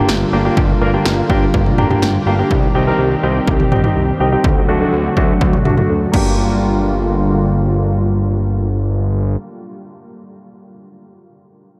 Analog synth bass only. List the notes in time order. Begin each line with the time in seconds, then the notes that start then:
0.09 G1
0.33 G1
0.57 G1
0.81 G1
1.05 G1
1.30 G1
1.54 G1
1.78 F1
2.02 G1
2.26 G1
2.51 C2
2.75 C2
2.99 C2
3.23 C2
3.47 C2
3.72 A#1
3.96 C2
4.20 C2
4.44 D2
4.68 D2
4.93 D2
5.17 D2
5.41 D2
5.65 C2
5.90 D2
6.14 G1